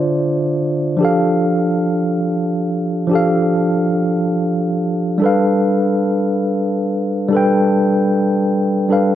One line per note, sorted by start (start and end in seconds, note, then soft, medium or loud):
0.00 0.95 D3 medium
0.00 0.96 D4 medium
0.00 0.97 F4 medium
0.00 0.98 C5 medium
0.00 0.99 D5 medium
0.97 3.05 F3 medium
0.97 3.06 D4 medium
0.97 3.07 G4 medium
1.03 3.08 A4 medium
1.03 3.09 F5 medium
3.07 5.16 F3 medium
3.07 5.17 D4 medium
3.11 5.18 G4 medium
3.11 5.19 A4 medium
3.11 5.20 F5 medium
5.18 7.26 G3 medium
5.18 7.27 D4 medium
5.18 7.28 A4 medium
5.24 7.29 B4 medium
5.24 7.30 F5 medium
7.29 8.85 G3 medium
7.29 8.86 D4 medium
7.29 8.87 A4 medium
7.35 8.88 B4 medium
7.35 8.89 G5 medium
8.89 9.15 G3 medium
8.89 9.15 D4 medium
8.89 9.15 A4 medium
8.89 9.15 B4 medium
8.93 9.15 F5 medium